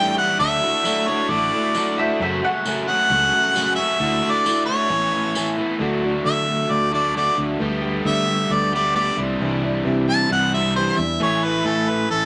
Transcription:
Already playing: steel-string acoustic guitar A2 D3 G3 D4 E4, overdriven electric guitar A2 E3 C#4 G4, harmonica G5
0.16 steel-string acoustic guitar G3 D4 E4, overdriven electric guitar C#4 G4, harmonica F#5
0.39 fingered electric bass D2, steel-string acoustic guitar D3 F#3 A3 D4 E4, overdriven electric guitar F#4, harmonica E5
0.61 steel-string acoustic guitar A3 D4 E4, overdriven electric guitar F#4
0.84 steel-string acoustic guitar D3 F#3 A3 D4 E4, overdriven electric guitar F#4, tambourine
1.07 steel-string acoustic guitar A3 D4 E4, overdriven electric guitar F#4, harmonica C#5
1.29 fingered electric bass A1, overdriven electric guitar D3 F#4, steel-string acoustic guitar F#3 A3 D4 E4, harmonica D5
1.53 steel-string acoustic guitar A3 D4 E4
1.75 steel-string acoustic guitar D3 F#3 A3 D4 E4, overdriven electric guitar F#4, tambourine
1.97 steel-string acoustic guitar A3 D4 E4, overdriven electric guitar F#4, mandolin C5 E5
2.19 steel-string acoustic guitar F#2 C#3 F#3 A3 C#4 F#4, fingered electric bass F#2, mandolin C5 E5
2.42 steel-string acoustic guitar F#3 A3 C#4 F#4, mandolin F#5
2.65 steel-string acoustic guitar F#2 C#3 F#3 A3 C#4 F#4, tambourine
2.87 steel-string acoustic guitar F#3 A3 C#4 F#4, harmonica F#5
3.10 fingered electric bass C#2, overdriven electric guitar F#2 C#3, steel-string acoustic guitar F#3 A3 C#4 F#4
3.33 steel-string acoustic guitar F#3 A3 C#4 F#4
3.55 steel-string acoustic guitar F#2 C#3 F#3 A3 C#4 F#4, tambourine
3.76 steel-string acoustic guitar F#4, harmonica E5
3.80 steel-string acoustic guitar F#3 A3 C#4
4.00 fingered electric bass D2, steel-string acoustic guitar D3 A3 E4 F#4, overdriven electric guitar D4
4.22 steel-string acoustic guitar A3 E4 F#4, overdriven electric guitar D4
4.31 harmonica D5
4.45 steel-string acoustic guitar D3 A3 E4 F#4, overdriven electric guitar D4, tambourine
4.66 overdriven electric guitar D4, steel-string acoustic guitar E4 F#4, harmonica C#5
4.70 steel-string acoustic guitar A3
4.89 fingered electric bass A1, overdriven electric guitar A2 A3, steel-string acoustic guitar E3 B3 C#4 E4
5.12 steel-string acoustic guitar B3 C#4 E4
5.35 steel-string acoustic guitar A2 E3 B3 C#4 E4, overdriven electric guitar A3, tambourine
5.56 overdriven electric guitar A3, steel-string acoustic guitar B3 C#4 E4
5.79 fingered electric bass D2, steel-string acoustic guitar D3 A3 D4 F#4, overdriven electric guitar F#3
6.02 steel-string acoustic guitar A3 D4 F#4
6.24 steel-string acoustic guitar D3 A3 D4 F#4, fingered electric bass D3, harmonica E5
6.47 steel-string acoustic guitar A3 D4 F#4
6.69 fingered electric bass D2, steel-string acoustic guitar D3 A3 D4 F#4, harmonica D5
6.91 overdriven electric guitar D3 F#3, steel-string acoustic guitar A3 D4 F#4, harmonica D5
7.14 steel-string acoustic guitar D3 A3 D4 F#4, overdriven electric guitar F#3, harmonica D5
7.36 fingered electric bass D2, steel-string acoustic guitar A3 D4 F#4
7.59 fingered electric bass D2, steel-string acoustic guitar D3 A3 B3 G4, overdriven electric guitar G3
7.82 steel-string acoustic guitar A3 B3 G4
8.04 steel-string acoustic guitar D3 A3 B3 G4, fingered electric bass D3, harmonica E5
8.27 steel-string acoustic guitar A3 B3 G4
8.50 fingered electric bass D2, steel-string acoustic guitar D3 A3 B3 G4, harmonica D5
8.73 overdriven electric guitar D3 G3, steel-string acoustic guitar A3 B3 G4, harmonica D5
8.95 steel-string acoustic guitar D3 A3 B3 G4, overdriven electric guitar G3, harmonica D5
9.17 fingered electric bass C2, overdriven electric guitar C3 E3 C4, steel-string acoustic guitar G3 D4 E4
9.40 fingered electric bass C2, steel-string acoustic guitar C3 E3 G3 D4 E4
9.62 steel-string acoustic guitar G3 D4 E4
9.84 steel-string acoustic guitar C3 E3 G3 D4 E4, fingered electric bass C3
10.08 steel-string acoustic guitar G3 E4, harmonica A5
10.29 fingered electric bass C2, overdriven electric guitar C3 C4, steel-string acoustic guitar E3 G3, harmonica F#5
10.33 steel-string acoustic guitar D4 E4
10.53 overdriven electric guitar C3 E3 C4, steel-string acoustic guitar G3 D4 E4, harmonica E5
10.76 steel-string acoustic guitar C3 E3 G3 D4 E4, harmonica C5
10.97 fingered electric bass E2, steel-string acoustic guitar G3 D4 E4, harmonica E5
11.18 fingered electric bass A1, steel-string acoustic guitar A2 E3 A3 C#4 E4
11.23 harmonica C#5
11.42 steel-string acoustic guitar A3 C#4 E4, harmonica B4
11.64 steel-string acoustic guitar A2 E3 A3 C#4 E4, fingered electric bass A2, harmonica A4
11.87 steel-string acoustic guitar A3 C#4 E4, harmonica B4
12.09 fingered electric bass A1, steel-string acoustic guitar E3 A3 C#4 E4, harmonica A4

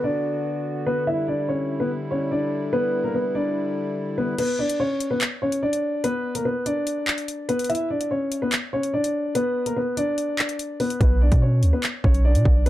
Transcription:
Already playing: harmonium D3 B3 F#4, downlifter
0.04 grand piano D4 D5
0.87 grand piano B3 B4
1.07 harmonium G3 E4, grand piano E4 E5
1.28 grand piano D4 D5
1.49 grand piano C#4 C#5
1.80 grand piano B3 B4
2.11 grand piano C#4 C#5
2.32 grand piano D4 D5
2.73 grand piano B3 B4
3.04 grand piano A#3 A#4
3.14 grand piano B3 B4
3.35 grand piano D4 D5
4.18 grand piano B3 B4
4.38 grand piano B3 B4, closed hi-hat, crash
4.59 grand piano D4 D5
4.70 closed hi-hat
4.80 grand piano C#4 C#5
5.00 closed hi-hat
5.11 grand piano B3 B4
5.21 clap, closed hi-hat
5.42 grand piano C#4 C#5
5.52 closed hi-hat
5.63 grand piano D4 D5
5.73 closed hi-hat
6.04 grand piano B3 B4, closed hi-hat
6.35 grand piano A#3 A#4, closed hi-hat
6.45 grand piano B3 B4
6.66 grand piano D4 D5, closed hi-hat
6.87 closed hi-hat
7.07 clap
7.18 closed hi-hat
7.28 closed hi-hat
7.49 grand piano B3 B4, closed hi-hat
7.59 closed hi-hat
7.64 closed hi-hat
7.70 grand piano E4 E5, closed hi-hat
7.75 closed hi-hat
7.90 grand piano D4 D5
8.01 closed hi-hat
8.11 grand piano C#4 C#5
8.32 closed hi-hat
8.42 grand piano B3 B4
8.52 clap, closed hi-hat
8.73 grand piano C#4 C#5
8.83 closed hi-hat
8.94 grand piano D4 D5
9.04 closed hi-hat
9.35 grand piano B3 B4, closed hi-hat
9.66 grand piano A#3 A#4, closed hi-hat
9.76 grand piano B3 B4
9.97 grand piano D4 D5, closed hi-hat
10.18 closed hi-hat
10.39 clap
10.49 closed hi-hat
10.59 closed hi-hat
10.80 grand piano B3 B4, open hi-hat
10.90 closed hi-hat
11.01 808-style bass B1, grand piano B3 B4, kick, closed hi-hat
11.21 grand piano D4 D5
11.32 808-style bass B2, kick, closed hi-hat
11.42 grand piano C#4 C#5
11.63 808-style bass D2, closed hi-hat
11.73 grand piano B3 B4
11.83 clap, closed hi-hat
12.04 808-style bass B1, grand piano C#4 C#5, kick
12.14 closed hi-hat
12.25 grand piano D4 D5
12.35 808-style bass B2, closed hi-hat
12.45 808-style bass B1, kick
12.66 grand piano B4, closed hi-hat

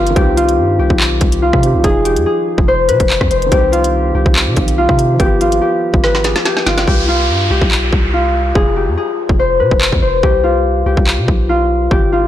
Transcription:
Already playing: 808-style bass G1, grand piano F3 B3 G4, harp F4 G4 B4
0.07 grand piano D#3, closed hi-hat
0.16 808-style bass C2, grand piano C4, harp G4, kick, closed hi-hat
0.22 grand piano G4
0.37 harp F4, closed hi-hat
0.49 closed hi-hat
0.58 808-style bass G2
0.79 808-style bass C2, harp G4
0.90 808-style bass B1, kick
1.00 clap
1.21 808-style bass C2, kick, closed hi-hat
1.32 closed hi-hat
1.42 harp F4
1.53 808-style bass C3, kick, cross-stick
1.61 grand piano D#3 C4, closed hi-hat
1.66 grand piano G4
1.74 808-style bass B1
1.79 grand piano F3
1.84 808-style bass F1, grand piano D#4, harp G#4, kick, closed hi-hat
1.90 grand piano G#4
2.05 harp G4, closed hi-hat
2.16 808-style bass F2, closed hi-hat
2.26 harp G#4
2.58 808-style bass F1, kick
2.68 harp C5
2.88 808-style bass C3, harp B4, closed hi-hat
3.00 808-style bass F1, kick, closed hi-hat
3.10 clap, closed hi-hat
3.21 808-style bass F2, kick, cross-stick
3.31 808-style bass F1, harp C5, closed hi-hat
3.42 closed hi-hat
3.46 grand piano D#3
3.52 808-style bass C2, grand piano C4, harp G4, kick, closed hi-hat
3.58 grand piano G4
3.72 harp F4, closed hi-hat
3.84 closed hi-hat
4.15 808-style bass C2, harp G4
4.26 808-style bass C2, kick
4.36 clap
4.47 808-style bass C3
4.54 808-style bass B1, grand piano D#3 C4, kick, closed hi-hat
4.60 grand piano F4
4.68 closed hi-hat
4.78 harp F4
4.89 808-style bass C3, kick, cross-stick
4.99 closed hi-hat
5.14 grand piano F3
5.20 808-style bass G1, grand piano B3, harp G4, kick, closed hi-hat
5.25 grand piano G4
5.41 808-style bass G#1, harp F4, closed hi-hat
5.52 closed hi-hat
5.61 harp G4
5.94 808-style bass G1, kick
6.04 harp B4, snare
6.15 808-style bass G#1, snare
6.24 harp G#4, snare, closed hi-hat
6.36 snare, closed hi-hat
6.45 harp G4, snare, closed hi-hat
6.57 snare
6.67 808-style bass G1, harp F4, snare, closed hi-hat
6.78 snare, closed hi-hat
6.87 808-style bass C2, harp G4, kick, downlifter
7.08 harp F4
7.30 808-style bass G2
7.50 808-style bass C2, harp G4
7.62 808-style bass B1, kick
7.71 clap
7.93 808-style bass C2, kick
8.13 harp F4
8.55 808-style bass F1, harp G#4, kick
8.76 harp G4
8.87 808-style bass F2
8.97 harp G#4
9.29 808-style bass F1, kick
9.39 harp C5
9.60 808-style bass C3, harp B4
9.71 808-style bass F1, kick
9.81 clap
9.92 808-style bass F2, kick
10.02 808-style bass F1, harp C5
10.23 808-style bass C2, harp G4, kick
10.44 harp F4
10.86 808-style bass C2, harp G4
10.97 808-style bass C2, kick
11.07 clap
11.18 808-style bass C3
11.28 808-style bass B1, kick
11.49 harp F4
11.91 808-style bass G1, harp G4, kick
12.12 808-style bass G#1, harp F4

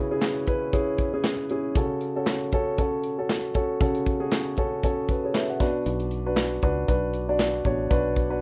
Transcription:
Already playing: grand piano C#3 C#4 E4 F#4 G#4 B4
0.11 grand piano C#4 E4 G#4
0.21 snare, clap, closed hi-hat
0.47 grand piano C#4 E4 B4, kick, closed hi-hat
0.73 grand piano C#4 E4 G#4, kick, closed hi-hat
0.98 kick, closed hi-hat
1.14 grand piano C#4 E4 G#4
1.24 snare, clap, closed hi-hat
1.49 grand piano C#4 E4 G#4, closed hi-hat
1.75 grand piano C#3 C#4 F#4 A4, kick, closed hi-hat
2.01 closed hi-hat
2.16 grand piano C#4 F#4 A4
2.26 snare, clap, closed hi-hat
2.52 grand piano C#4 F#4 A4, kick, closed hi-hat
2.78 grand piano C#4 F#4 A4, kick, closed hi-hat
3.04 closed hi-hat
3.19 grand piano C#4 F#4 A4
3.29 snare, clap, closed hi-hat
3.54 grand piano C#4 F#4 A4, kick, closed hi-hat
3.81 grand piano C#3 C#4 F#4 A4, kick, closed hi-hat
3.95 closed hi-hat
4.06 kick, closed hi-hat
4.20 grand piano C#4 F#4 G#4
4.31 snare, clap, closed hi-hat
4.57 grand piano C#4 F#4 A4, kick, closed hi-hat
4.83 grand piano C#4 F#4 A4, kick, closed hi-hat
5.08 grand piano F#4 B4, kick, closed hi-hat
5.24 grand piano G#4 C#5
5.34 grand piano B4 E5, snare, clap, closed hi-hat
5.50 grand piano C#5 F#5
5.60 grand piano B2 D4 F#4 B4, kick, snare, closed hi-hat
5.86 fingered electric bass B1, closed hi-hat
6.00 closed hi-hat
6.11 closed hi-hat
6.26 grand piano D4 F#4 B4
6.36 snare, clap, closed hi-hat
6.62 fingered electric bass C#2, grand piano D4 F#4 B4, kick, closed hi-hat
6.88 fingered electric bass B1, grand piano D4 F#4 B4, kick, closed hi-hat
7.13 closed hi-hat
7.29 grand piano D4 F#4 D5
7.39 snare, clap, closed hi-hat
7.65 fingered electric bass A1, grand piano B2 D4 F#4 C#5, kick, closed hi-hat
7.90 fingered electric bass B1, grand piano D4 F#4 B4, kick, closed hi-hat
8.16 kick, closed hi-hat
8.30 grand piano D4 F#4 B4

